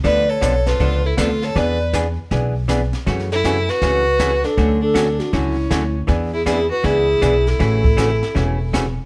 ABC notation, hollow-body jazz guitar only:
X:1
M:4/4
L:1/16
Q:"Swing" 1/4=159
K:Emix
V:1 name="Hollow-body jazz guitar"
[D,=F,B,DA]2 z2 [D,F,B,DA] z3 [D,F,B,DA]2 z2 [D,F,B,DA] z3 | [E,B,DG]2 z2 [E,B,DG] z3 [E,B,DG]2 z2 [E,B,DG] z3 | [C,E,A,CF]2 z2 [C,E,A,CF] z3 [C,E,A,CF]2 z2 [C,E,A,CF] z3 | [D,F,A,CF]2 z2 [D,F,A,CF] z3 [D,F,A,CF]2 z2 [D,F,A,CF] z3 |
[E,B,DG]2 z2 [E,B,DG] z3 [E,B,DG]2 z2 [E,B,DG] z3 | [C,E,A,CF]2 z2 [C,E,A,CF] z3 [C,E,A,CF]2 z2 [C,E,A,CF] z3 |]